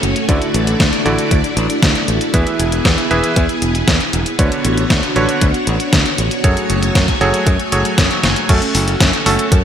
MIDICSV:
0, 0, Header, 1, 5, 480
1, 0, Start_track
1, 0, Key_signature, 3, "minor"
1, 0, Tempo, 512821
1, 269, Time_signature, 4, 2, 24, 8
1, 9023, End_track
2, 0, Start_track
2, 0, Title_t, "Electric grand piano"
2, 0, Program_c, 0, 2
2, 268, Note_on_c, 0, 50, 76
2, 268, Note_on_c, 0, 64, 65
2, 268, Note_on_c, 0, 66, 68
2, 268, Note_on_c, 0, 69, 66
2, 268, Note_on_c, 0, 74, 79
2, 959, Note_off_c, 0, 64, 0
2, 959, Note_off_c, 0, 66, 0
2, 959, Note_off_c, 0, 74, 0
2, 960, Note_off_c, 0, 50, 0
2, 960, Note_off_c, 0, 69, 0
2, 988, Note_on_c, 0, 50, 97
2, 988, Note_on_c, 0, 64, 88
2, 988, Note_on_c, 0, 66, 93
2, 988, Note_on_c, 0, 69, 92
2, 988, Note_on_c, 0, 74, 105
2, 1259, Note_off_c, 0, 50, 0
2, 1259, Note_off_c, 0, 64, 0
2, 1259, Note_off_c, 0, 66, 0
2, 1259, Note_off_c, 0, 69, 0
2, 1259, Note_off_c, 0, 74, 0
2, 2187, Note_on_c, 0, 52, 74
2, 2187, Note_on_c, 0, 64, 70
2, 2187, Note_on_c, 0, 68, 66
2, 2188, Note_on_c, 0, 71, 67
2, 2188, Note_on_c, 0, 76, 82
2, 2879, Note_off_c, 0, 52, 0
2, 2879, Note_off_c, 0, 64, 0
2, 2879, Note_off_c, 0, 68, 0
2, 2879, Note_off_c, 0, 76, 0
2, 2880, Note_off_c, 0, 71, 0
2, 2908, Note_on_c, 0, 52, 96
2, 2908, Note_on_c, 0, 64, 89
2, 2908, Note_on_c, 0, 68, 90
2, 2908, Note_on_c, 0, 76, 105
2, 2909, Note_on_c, 0, 71, 91
2, 3179, Note_off_c, 0, 52, 0
2, 3179, Note_off_c, 0, 64, 0
2, 3179, Note_off_c, 0, 68, 0
2, 3179, Note_off_c, 0, 71, 0
2, 3179, Note_off_c, 0, 76, 0
2, 4108, Note_on_c, 0, 50, 76
2, 4108, Note_on_c, 0, 62, 72
2, 4108, Note_on_c, 0, 66, 68
2, 4108, Note_on_c, 0, 71, 68
2, 4108, Note_on_c, 0, 73, 83
2, 4799, Note_off_c, 0, 62, 0
2, 4799, Note_off_c, 0, 66, 0
2, 4800, Note_off_c, 0, 50, 0
2, 4800, Note_off_c, 0, 71, 0
2, 4800, Note_off_c, 0, 73, 0
2, 4828, Note_on_c, 0, 71, 89
2, 4829, Note_on_c, 0, 50, 101
2, 4829, Note_on_c, 0, 62, 90
2, 4829, Note_on_c, 0, 66, 87
2, 4829, Note_on_c, 0, 73, 109
2, 5099, Note_off_c, 0, 50, 0
2, 5099, Note_off_c, 0, 62, 0
2, 5099, Note_off_c, 0, 66, 0
2, 5099, Note_off_c, 0, 71, 0
2, 5099, Note_off_c, 0, 73, 0
2, 6028, Note_on_c, 0, 54, 79
2, 6028, Note_on_c, 0, 68, 66
2, 6028, Note_on_c, 0, 69, 68
2, 6028, Note_on_c, 0, 73, 85
2, 6029, Note_on_c, 0, 66, 71
2, 6720, Note_off_c, 0, 54, 0
2, 6720, Note_off_c, 0, 66, 0
2, 6720, Note_off_c, 0, 68, 0
2, 6720, Note_off_c, 0, 69, 0
2, 6720, Note_off_c, 0, 73, 0
2, 6748, Note_on_c, 0, 54, 99
2, 6748, Note_on_c, 0, 66, 89
2, 6748, Note_on_c, 0, 68, 91
2, 6748, Note_on_c, 0, 69, 94
2, 6748, Note_on_c, 0, 73, 106
2, 7019, Note_off_c, 0, 54, 0
2, 7019, Note_off_c, 0, 66, 0
2, 7019, Note_off_c, 0, 68, 0
2, 7019, Note_off_c, 0, 69, 0
2, 7019, Note_off_c, 0, 73, 0
2, 7228, Note_on_c, 0, 66, 81
2, 7228, Note_on_c, 0, 68, 78
2, 7228, Note_on_c, 0, 73, 100
2, 7229, Note_on_c, 0, 54, 89
2, 7229, Note_on_c, 0, 69, 76
2, 7920, Note_off_c, 0, 54, 0
2, 7920, Note_off_c, 0, 66, 0
2, 7920, Note_off_c, 0, 68, 0
2, 7920, Note_off_c, 0, 69, 0
2, 7920, Note_off_c, 0, 73, 0
2, 7948, Note_on_c, 0, 57, 77
2, 7948, Note_on_c, 0, 61, 71
2, 7948, Note_on_c, 0, 66, 72
2, 7948, Note_on_c, 0, 69, 85
2, 8639, Note_off_c, 0, 69, 0
2, 8640, Note_off_c, 0, 57, 0
2, 8640, Note_off_c, 0, 61, 0
2, 8640, Note_off_c, 0, 66, 0
2, 8668, Note_on_c, 0, 57, 97
2, 8668, Note_on_c, 0, 61, 89
2, 8668, Note_on_c, 0, 66, 90
2, 8668, Note_on_c, 0, 69, 107
2, 8939, Note_off_c, 0, 57, 0
2, 8939, Note_off_c, 0, 61, 0
2, 8939, Note_off_c, 0, 66, 0
2, 8939, Note_off_c, 0, 69, 0
2, 9023, End_track
3, 0, Start_track
3, 0, Title_t, "String machine"
3, 0, Program_c, 1, 50
3, 0, Note_on_c, 1, 57, 81
3, 0, Note_on_c, 1, 61, 72
3, 0, Note_on_c, 1, 66, 72
3, 0, Note_on_c, 1, 73, 88
3, 0, Note_on_c, 1, 80, 75
3, 232, Note_off_c, 1, 73, 0
3, 249, Note_off_c, 1, 80, 0
3, 250, Note_off_c, 1, 61, 0
3, 268, Note_on_c, 1, 62, 75
3, 268, Note_on_c, 1, 74, 94
3, 269, Note_on_c, 1, 64, 77
3, 2151, Note_off_c, 1, 57, 0
3, 2151, Note_off_c, 1, 66, 0
3, 2169, Note_off_c, 1, 62, 0
3, 2169, Note_off_c, 1, 74, 0
3, 2189, Note_on_c, 1, 59, 81
3, 2190, Note_on_c, 1, 68, 93
3, 4071, Note_off_c, 1, 64, 0
3, 4090, Note_off_c, 1, 68, 0
3, 4107, Note_on_c, 1, 66, 74
3, 4108, Note_on_c, 1, 62, 71
3, 4108, Note_on_c, 1, 73, 92
3, 5991, Note_off_c, 1, 59, 0
3, 6009, Note_off_c, 1, 62, 0
3, 6026, Note_on_c, 1, 80, 76
3, 6027, Note_on_c, 1, 57, 80
3, 7910, Note_off_c, 1, 66, 0
3, 7911, Note_off_c, 1, 73, 0
3, 7928, Note_off_c, 1, 80, 0
3, 7929, Note_off_c, 1, 57, 0
3, 7948, Note_on_c, 1, 66, 75
3, 7950, Note_on_c, 1, 61, 79
3, 7950, Note_on_c, 1, 69, 93
3, 9023, Note_off_c, 1, 61, 0
3, 9023, Note_off_c, 1, 66, 0
3, 9023, Note_off_c, 1, 69, 0
3, 9023, End_track
4, 0, Start_track
4, 0, Title_t, "Fingered electric bass"
4, 0, Program_c, 2, 33
4, 28, Note_on_c, 2, 30, 92
4, 119, Note_off_c, 2, 30, 0
4, 269, Note_on_c, 2, 38, 101
4, 359, Note_off_c, 2, 38, 0
4, 509, Note_on_c, 2, 33, 104
4, 689, Note_off_c, 2, 33, 0
4, 749, Note_on_c, 2, 38, 91
4, 839, Note_off_c, 2, 38, 0
4, 988, Note_on_c, 2, 33, 83
4, 1079, Note_off_c, 2, 33, 0
4, 1229, Note_on_c, 2, 38, 88
4, 1319, Note_off_c, 2, 38, 0
4, 1467, Note_on_c, 2, 33, 106
4, 1558, Note_off_c, 2, 33, 0
4, 1709, Note_on_c, 2, 38, 80
4, 1799, Note_off_c, 2, 38, 0
4, 1949, Note_on_c, 2, 33, 86
4, 2039, Note_off_c, 2, 33, 0
4, 2189, Note_on_c, 2, 40, 102
4, 2279, Note_off_c, 2, 40, 0
4, 2429, Note_on_c, 2, 28, 104
4, 2609, Note_off_c, 2, 28, 0
4, 2669, Note_on_c, 2, 40, 92
4, 2759, Note_off_c, 2, 40, 0
4, 2910, Note_on_c, 2, 28, 77
4, 3000, Note_off_c, 2, 28, 0
4, 3149, Note_on_c, 2, 40, 110
4, 3239, Note_off_c, 2, 40, 0
4, 3388, Note_on_c, 2, 28, 99
4, 3569, Note_off_c, 2, 28, 0
4, 3629, Note_on_c, 2, 40, 90
4, 3719, Note_off_c, 2, 40, 0
4, 3870, Note_on_c, 2, 28, 97
4, 3960, Note_off_c, 2, 28, 0
4, 4108, Note_on_c, 2, 38, 99
4, 4199, Note_off_c, 2, 38, 0
4, 4350, Note_on_c, 2, 33, 99
4, 4530, Note_off_c, 2, 33, 0
4, 4588, Note_on_c, 2, 38, 91
4, 4679, Note_off_c, 2, 38, 0
4, 4829, Note_on_c, 2, 33, 83
4, 4919, Note_off_c, 2, 33, 0
4, 5068, Note_on_c, 2, 38, 91
4, 5159, Note_off_c, 2, 38, 0
4, 5309, Note_on_c, 2, 33, 100
4, 5399, Note_off_c, 2, 33, 0
4, 5549, Note_on_c, 2, 38, 78
4, 5639, Note_off_c, 2, 38, 0
4, 5788, Note_on_c, 2, 33, 82
4, 5879, Note_off_c, 2, 33, 0
4, 6028, Note_on_c, 2, 42, 99
4, 6119, Note_off_c, 2, 42, 0
4, 6269, Note_on_c, 2, 30, 97
4, 6450, Note_off_c, 2, 30, 0
4, 6508, Note_on_c, 2, 42, 93
4, 6599, Note_off_c, 2, 42, 0
4, 6749, Note_on_c, 2, 30, 80
4, 6839, Note_off_c, 2, 30, 0
4, 6988, Note_on_c, 2, 42, 110
4, 7079, Note_off_c, 2, 42, 0
4, 7229, Note_on_c, 2, 30, 92
4, 7319, Note_off_c, 2, 30, 0
4, 7468, Note_on_c, 2, 42, 92
4, 7559, Note_off_c, 2, 42, 0
4, 7710, Note_on_c, 2, 30, 91
4, 7800, Note_off_c, 2, 30, 0
4, 7949, Note_on_c, 2, 42, 98
4, 8039, Note_off_c, 2, 42, 0
4, 8188, Note_on_c, 2, 30, 101
4, 8369, Note_off_c, 2, 30, 0
4, 8429, Note_on_c, 2, 42, 96
4, 8519, Note_off_c, 2, 42, 0
4, 8668, Note_on_c, 2, 30, 84
4, 8759, Note_off_c, 2, 30, 0
4, 8908, Note_on_c, 2, 42, 92
4, 8999, Note_off_c, 2, 42, 0
4, 9023, End_track
5, 0, Start_track
5, 0, Title_t, "Drums"
5, 29, Note_on_c, 9, 42, 65
5, 123, Note_off_c, 9, 42, 0
5, 149, Note_on_c, 9, 42, 39
5, 243, Note_off_c, 9, 42, 0
5, 269, Note_on_c, 9, 36, 111
5, 269, Note_on_c, 9, 42, 85
5, 362, Note_off_c, 9, 36, 0
5, 362, Note_off_c, 9, 42, 0
5, 389, Note_on_c, 9, 42, 37
5, 483, Note_off_c, 9, 42, 0
5, 509, Note_on_c, 9, 42, 59
5, 603, Note_off_c, 9, 42, 0
5, 629, Note_on_c, 9, 42, 37
5, 723, Note_off_c, 9, 42, 0
5, 749, Note_on_c, 9, 36, 116
5, 749, Note_on_c, 9, 38, 116
5, 749, Note_on_c, 9, 42, 84
5, 842, Note_off_c, 9, 36, 0
5, 842, Note_off_c, 9, 38, 0
5, 842, Note_off_c, 9, 42, 0
5, 868, Note_on_c, 9, 42, 36
5, 962, Note_off_c, 9, 42, 0
5, 989, Note_on_c, 9, 42, 35
5, 1082, Note_off_c, 9, 42, 0
5, 1109, Note_on_c, 9, 42, 38
5, 1202, Note_off_c, 9, 42, 0
5, 1228, Note_on_c, 9, 36, 120
5, 1229, Note_on_c, 9, 42, 89
5, 1322, Note_off_c, 9, 36, 0
5, 1322, Note_off_c, 9, 42, 0
5, 1349, Note_on_c, 9, 42, 37
5, 1443, Note_off_c, 9, 42, 0
5, 1469, Note_on_c, 9, 42, 64
5, 1562, Note_off_c, 9, 42, 0
5, 1589, Note_on_c, 9, 42, 38
5, 1683, Note_off_c, 9, 42, 0
5, 1708, Note_on_c, 9, 36, 117
5, 1709, Note_on_c, 9, 38, 118
5, 1709, Note_on_c, 9, 42, 87
5, 1802, Note_off_c, 9, 36, 0
5, 1803, Note_off_c, 9, 38, 0
5, 1803, Note_off_c, 9, 42, 0
5, 1828, Note_on_c, 9, 42, 37
5, 1922, Note_off_c, 9, 42, 0
5, 1948, Note_on_c, 9, 42, 61
5, 2042, Note_off_c, 9, 42, 0
5, 2068, Note_on_c, 9, 42, 38
5, 2162, Note_off_c, 9, 42, 0
5, 2188, Note_on_c, 9, 36, 111
5, 2188, Note_on_c, 9, 42, 86
5, 2281, Note_off_c, 9, 42, 0
5, 2282, Note_off_c, 9, 36, 0
5, 2309, Note_on_c, 9, 42, 38
5, 2402, Note_off_c, 9, 42, 0
5, 2429, Note_on_c, 9, 42, 61
5, 2523, Note_off_c, 9, 42, 0
5, 2548, Note_on_c, 9, 42, 38
5, 2642, Note_off_c, 9, 42, 0
5, 2668, Note_on_c, 9, 38, 113
5, 2668, Note_on_c, 9, 42, 85
5, 2669, Note_on_c, 9, 36, 113
5, 2762, Note_off_c, 9, 36, 0
5, 2762, Note_off_c, 9, 38, 0
5, 2762, Note_off_c, 9, 42, 0
5, 2789, Note_on_c, 9, 42, 37
5, 2882, Note_off_c, 9, 42, 0
5, 2909, Note_on_c, 9, 42, 34
5, 3002, Note_off_c, 9, 42, 0
5, 3029, Note_on_c, 9, 42, 37
5, 3122, Note_off_c, 9, 42, 0
5, 3148, Note_on_c, 9, 42, 92
5, 3149, Note_on_c, 9, 36, 111
5, 3242, Note_off_c, 9, 36, 0
5, 3242, Note_off_c, 9, 42, 0
5, 3268, Note_on_c, 9, 42, 37
5, 3362, Note_off_c, 9, 42, 0
5, 3388, Note_on_c, 9, 42, 64
5, 3481, Note_off_c, 9, 42, 0
5, 3509, Note_on_c, 9, 42, 37
5, 3602, Note_off_c, 9, 42, 0
5, 3628, Note_on_c, 9, 38, 112
5, 3628, Note_on_c, 9, 42, 86
5, 3629, Note_on_c, 9, 36, 108
5, 3722, Note_off_c, 9, 36, 0
5, 3722, Note_off_c, 9, 38, 0
5, 3722, Note_off_c, 9, 42, 0
5, 3748, Note_on_c, 9, 42, 39
5, 3841, Note_off_c, 9, 42, 0
5, 3868, Note_on_c, 9, 42, 62
5, 3962, Note_off_c, 9, 42, 0
5, 3988, Note_on_c, 9, 42, 38
5, 4082, Note_off_c, 9, 42, 0
5, 4108, Note_on_c, 9, 36, 110
5, 4108, Note_on_c, 9, 42, 90
5, 4202, Note_off_c, 9, 36, 0
5, 4202, Note_off_c, 9, 42, 0
5, 4229, Note_on_c, 9, 42, 38
5, 4322, Note_off_c, 9, 42, 0
5, 4348, Note_on_c, 9, 42, 62
5, 4442, Note_off_c, 9, 42, 0
5, 4469, Note_on_c, 9, 42, 38
5, 4563, Note_off_c, 9, 42, 0
5, 4588, Note_on_c, 9, 36, 112
5, 4588, Note_on_c, 9, 38, 110
5, 4588, Note_on_c, 9, 42, 84
5, 4682, Note_off_c, 9, 36, 0
5, 4682, Note_off_c, 9, 38, 0
5, 4682, Note_off_c, 9, 42, 0
5, 4708, Note_on_c, 9, 42, 38
5, 4802, Note_off_c, 9, 42, 0
5, 4829, Note_on_c, 9, 42, 36
5, 4923, Note_off_c, 9, 42, 0
5, 4948, Note_on_c, 9, 42, 39
5, 5042, Note_off_c, 9, 42, 0
5, 5068, Note_on_c, 9, 36, 110
5, 5068, Note_on_c, 9, 42, 92
5, 5162, Note_off_c, 9, 36, 0
5, 5162, Note_off_c, 9, 42, 0
5, 5188, Note_on_c, 9, 42, 37
5, 5282, Note_off_c, 9, 42, 0
5, 5308, Note_on_c, 9, 42, 67
5, 5402, Note_off_c, 9, 42, 0
5, 5428, Note_on_c, 9, 42, 39
5, 5522, Note_off_c, 9, 42, 0
5, 5548, Note_on_c, 9, 36, 107
5, 5548, Note_on_c, 9, 38, 112
5, 5548, Note_on_c, 9, 42, 94
5, 5641, Note_off_c, 9, 38, 0
5, 5641, Note_off_c, 9, 42, 0
5, 5642, Note_off_c, 9, 36, 0
5, 5668, Note_on_c, 9, 42, 40
5, 5762, Note_off_c, 9, 42, 0
5, 5788, Note_on_c, 9, 42, 66
5, 5881, Note_off_c, 9, 42, 0
5, 5908, Note_on_c, 9, 42, 39
5, 6002, Note_off_c, 9, 42, 0
5, 6028, Note_on_c, 9, 36, 104
5, 6028, Note_on_c, 9, 42, 96
5, 6122, Note_off_c, 9, 36, 0
5, 6122, Note_off_c, 9, 42, 0
5, 6149, Note_on_c, 9, 42, 39
5, 6242, Note_off_c, 9, 42, 0
5, 6268, Note_on_c, 9, 42, 64
5, 6362, Note_off_c, 9, 42, 0
5, 6389, Note_on_c, 9, 42, 40
5, 6482, Note_off_c, 9, 42, 0
5, 6508, Note_on_c, 9, 36, 111
5, 6508, Note_on_c, 9, 38, 109
5, 6508, Note_on_c, 9, 42, 95
5, 6602, Note_off_c, 9, 36, 0
5, 6602, Note_off_c, 9, 38, 0
5, 6602, Note_off_c, 9, 42, 0
5, 6628, Note_on_c, 9, 36, 62
5, 6628, Note_on_c, 9, 42, 40
5, 6722, Note_off_c, 9, 36, 0
5, 6722, Note_off_c, 9, 42, 0
5, 6749, Note_on_c, 9, 42, 36
5, 6842, Note_off_c, 9, 42, 0
5, 6868, Note_on_c, 9, 42, 39
5, 6962, Note_off_c, 9, 42, 0
5, 6988, Note_on_c, 9, 36, 115
5, 6988, Note_on_c, 9, 42, 96
5, 7082, Note_off_c, 9, 36, 0
5, 7082, Note_off_c, 9, 42, 0
5, 7109, Note_on_c, 9, 42, 40
5, 7203, Note_off_c, 9, 42, 0
5, 7228, Note_on_c, 9, 42, 67
5, 7322, Note_off_c, 9, 42, 0
5, 7349, Note_on_c, 9, 42, 40
5, 7442, Note_off_c, 9, 42, 0
5, 7468, Note_on_c, 9, 38, 117
5, 7468, Note_on_c, 9, 42, 94
5, 7469, Note_on_c, 9, 36, 108
5, 7562, Note_off_c, 9, 36, 0
5, 7562, Note_off_c, 9, 38, 0
5, 7562, Note_off_c, 9, 42, 0
5, 7588, Note_on_c, 9, 42, 42
5, 7681, Note_off_c, 9, 42, 0
5, 7708, Note_on_c, 9, 38, 96
5, 7708, Note_on_c, 9, 42, 69
5, 7801, Note_off_c, 9, 38, 0
5, 7801, Note_off_c, 9, 42, 0
5, 7828, Note_on_c, 9, 42, 38
5, 7922, Note_off_c, 9, 42, 0
5, 7948, Note_on_c, 9, 42, 97
5, 7948, Note_on_c, 9, 49, 108
5, 7949, Note_on_c, 9, 36, 111
5, 8042, Note_off_c, 9, 36, 0
5, 8042, Note_off_c, 9, 42, 0
5, 8042, Note_off_c, 9, 49, 0
5, 8068, Note_on_c, 9, 42, 43
5, 8162, Note_off_c, 9, 42, 0
5, 8188, Note_on_c, 9, 46, 110
5, 8281, Note_off_c, 9, 46, 0
5, 8308, Note_on_c, 9, 42, 43
5, 8402, Note_off_c, 9, 42, 0
5, 8429, Note_on_c, 9, 36, 116
5, 8429, Note_on_c, 9, 38, 122
5, 8429, Note_on_c, 9, 42, 101
5, 8522, Note_off_c, 9, 38, 0
5, 8522, Note_off_c, 9, 42, 0
5, 8523, Note_off_c, 9, 36, 0
5, 8549, Note_on_c, 9, 42, 40
5, 8642, Note_off_c, 9, 42, 0
5, 8668, Note_on_c, 9, 46, 106
5, 8762, Note_off_c, 9, 46, 0
5, 8790, Note_on_c, 9, 42, 43
5, 8883, Note_off_c, 9, 42, 0
5, 8909, Note_on_c, 9, 36, 119
5, 8909, Note_on_c, 9, 42, 100
5, 9002, Note_off_c, 9, 36, 0
5, 9003, Note_off_c, 9, 42, 0
5, 9023, End_track
0, 0, End_of_file